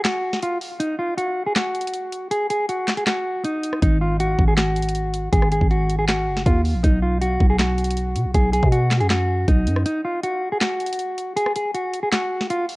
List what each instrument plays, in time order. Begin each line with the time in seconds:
0.04 clean electric guitar F#4, snare, clap, closed hi-hat
0.33 snare
0.42 clean electric guitar F4, closed hi-hat
0.61 open hi-hat
0.80 clean electric guitar D#4, closed hi-hat
0.99 clean electric guitar F4
1.18 clean electric guitar F#4, closed hi-hat
1.46 clean electric guitar G#4
1.56 clean electric guitar F#4, snare, clap, closed hi-hat
1.75 closed hi-hat
1.81 closed hi-hat
1.87 closed hi-hat
1.93 closed hi-hat
2.12 closed hi-hat
2.31 clean electric guitar G#4, closed hi-hat
2.50 clean electric guitar G#4, closed hi-hat
2.69 clean electric guitar F#4, closed hi-hat
2.88 snare, clap, closed hi-hat
2.97 clean electric guitar G#4, closed hi-hat
3.07 clean electric guitar F#4, snare, clap, closed hi-hat
3.44 clean electric guitar D#4, closed hi-hat
3.63 closed hi-hat
3.73 cross-stick
3.82 808-style bass G#1, clean electric guitar D#4, kick, closed hi-hat
4.01 clean electric guitar F4
4.20 clean electric guitar F#4, closed hi-hat
4.39 808-style bass G#1, kick
4.48 clean electric guitar G#4
4.57 clean electric guitar F#4, snare, clap, closed hi-hat
4.76 closed hi-hat
4.83 closed hi-hat
4.89 closed hi-hat
4.95 closed hi-hat
5.14 closed hi-hat
5.33 808-style bass G#1, clean electric guitar G#4, kick, closed hi-hat
5.42 cross-stick
5.52 clean electric guitar G#4, closed hi-hat
5.61 808-style bass G#1, kick
5.71 clean electric guitar F#4, closed hi-hat
5.89 closed hi-hat
5.99 clean electric guitar G#4
6.08 clean electric guitar F#4, snare, clap, closed hi-hat
6.27 808-style bass F#1
6.37 snare
6.46 808-style bass D#2, clean electric guitar F4, kick, closed hi-hat
6.65 open hi-hat
6.75 808-style bass A#1
6.84 808-style bass B1, clean electric guitar D#4, kick, closed hi-hat
7.02 clean electric guitar F4
7.21 clean electric guitar F#4, closed hi-hat
7.40 808-style bass B1, kick
7.50 clean electric guitar G#4
7.59 clean electric guitar F#4, snare, clap, closed hi-hat
7.78 closed hi-hat
7.84 closed hi-hat
7.91 closed hi-hat
7.97 closed hi-hat
8.16 808-style bass B2, closed hi-hat
8.25 808-style bass B1
8.35 808-style bass B1, clean electric guitar G#4, kick, closed hi-hat
8.53 clean electric guitar G#4, closed hi-hat
8.63 808-style bass B2, kick
8.72 clean electric guitar F#4, closed hi-hat
8.91 snare, clap, closed hi-hat
9.01 808-style bass F#2, clean electric guitar G#4, closed hi-hat
9.10 clean electric guitar F#4, snare, clap, closed hi-hat
9.48 808-style bass B1, clean electric guitar D#4, kick, closed hi-hat
9.67 808-style bass F#2, closed hi-hat
9.76 cross-stick
9.86 clean electric guitar D#4, closed hi-hat
10.05 clean electric guitar F4
10.23 clean electric guitar F#4, closed hi-hat
10.52 clean electric guitar G#4
10.61 clean electric guitar F#4, snare, clap, closed hi-hat
10.80 closed hi-hat
10.86 closed hi-hat
10.93 closed hi-hat
10.99 closed hi-hat
11.18 closed hi-hat
11.37 clean electric guitar G#4, closed hi-hat
11.46 cross-stick
11.56 clean electric guitar G#4, closed hi-hat
11.74 clean electric guitar F#4, closed hi-hat
11.93 closed hi-hat
12.03 clean electric guitar G#4
12.12 clean electric guitar F#4, snare, clap, closed hi-hat
12.41 snare
12.50 clean electric guitar F4, closed hi-hat
12.69 open hi-hat